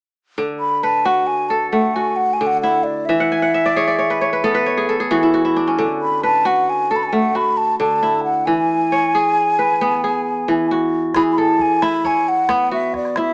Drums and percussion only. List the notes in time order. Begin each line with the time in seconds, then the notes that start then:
11.14 calabash thump, calabash click
11.59 calabash thump
11.82 calabash click
12.04 calabash thump
12.49 calabash thump, calabash click
12.94 calabash thump, calabash click
13.05 calabash click
13.16 calabash click